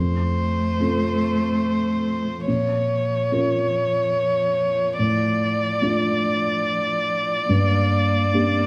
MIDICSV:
0, 0, Header, 1, 4, 480
1, 0, Start_track
1, 0, Key_signature, -1, "major"
1, 0, Tempo, 837989
1, 1416, Time_signature, 3, 2, 24, 8
1, 4964, End_track
2, 0, Start_track
2, 0, Title_t, "Violin"
2, 0, Program_c, 0, 40
2, 0, Note_on_c, 0, 72, 36
2, 1394, Note_off_c, 0, 72, 0
2, 1417, Note_on_c, 0, 73, 41
2, 2831, Note_off_c, 0, 73, 0
2, 2857, Note_on_c, 0, 74, 41
2, 4964, Note_off_c, 0, 74, 0
2, 4964, End_track
3, 0, Start_track
3, 0, Title_t, "Felt piano"
3, 0, Program_c, 1, 0
3, 0, Note_on_c, 1, 41, 36
3, 76, Control_c, 1, 64, 127
3, 441, Note_off_c, 1, 41, 0
3, 457, Note_on_c, 1, 60, 25
3, 461, Note_on_c, 1, 65, 25
3, 461, Note_on_c, 1, 69, 28
3, 1394, Note_off_c, 1, 60, 0
3, 1396, Note_off_c, 1, 65, 0
3, 1396, Note_off_c, 1, 69, 0
3, 1419, Note_on_c, 1, 46, 34
3, 1427, Control_c, 1, 64, 0
3, 1518, Control_c, 1, 64, 127
3, 1884, Note_off_c, 1, 46, 0
3, 1900, Note_on_c, 1, 61, 30
3, 1903, Note_on_c, 1, 65, 29
3, 1906, Note_on_c, 1, 70, 30
3, 2832, Note_off_c, 1, 61, 0
3, 2833, Note_off_c, 1, 65, 0
3, 2835, Note_off_c, 1, 70, 0
3, 2857, Note_on_c, 1, 45, 41
3, 2863, Control_c, 1, 64, 0
3, 2947, Control_c, 1, 64, 127
3, 3321, Note_off_c, 1, 45, 0
3, 3333, Note_on_c, 1, 57, 31
3, 3336, Note_on_c, 1, 62, 30
3, 3339, Note_on_c, 1, 65, 35
3, 4271, Note_off_c, 1, 57, 0
3, 4273, Note_off_c, 1, 62, 0
3, 4274, Note_off_c, 1, 65, 0
3, 4292, Note_on_c, 1, 43, 44
3, 4305, Control_c, 1, 64, 0
3, 4411, Control_c, 1, 64, 127
3, 4756, Note_off_c, 1, 43, 0
3, 4773, Note_on_c, 1, 58, 36
3, 4775, Note_on_c, 1, 62, 33
3, 4777, Note_on_c, 1, 67, 39
3, 4964, Note_off_c, 1, 58, 0
3, 4964, Note_off_c, 1, 62, 0
3, 4964, Note_off_c, 1, 67, 0
3, 4964, End_track
4, 0, Start_track
4, 0, Title_t, "Cello"
4, 0, Program_c, 2, 42
4, 0, Note_on_c, 2, 57, 35
4, 1392, Note_off_c, 2, 57, 0
4, 1407, Note_on_c, 2, 53, 35
4, 4266, Note_off_c, 2, 53, 0
4, 4295, Note_on_c, 2, 58, 45
4, 4964, Note_off_c, 2, 58, 0
4, 4964, End_track
0, 0, End_of_file